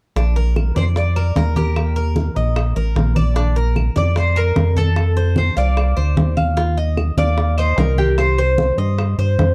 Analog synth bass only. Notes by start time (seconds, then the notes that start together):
0.16 A#1
0.76 F2
1.36 D#2
2.36 A#1
2.76 A1
2.96 A#1
3.96 F2
4.56 F2
5.57 C2
5.97 D2
6.17 D#2
7.17 D#2
7.77 C2
8.78 G2
9.18 G2
9.39 F2